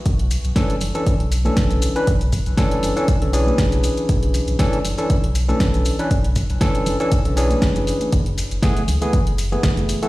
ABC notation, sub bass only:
X:1
M:4/4
L:1/16
Q:"Swing 16ths" 1/4=119
K:Bdor
V:1 name="Sub bass" clef=bass
B,,,2 z B,,, z2 F,,, z2 B,,,2 z B,,,2 z2 | B,,,2 z B,,, z2 F,,, z2 B,,,2 z B,,,2 z2 | B,,,2 z B,,, z2 F,,, z2 B,,,2 z B,,,2 z2 | B,,,2 z B,,, z2 F,,, z2 B,,,2 z F,,,2 z2 |
F,,,2 z F,,, z2 C,, z2 F,,,2 z F,,,2 z2 |]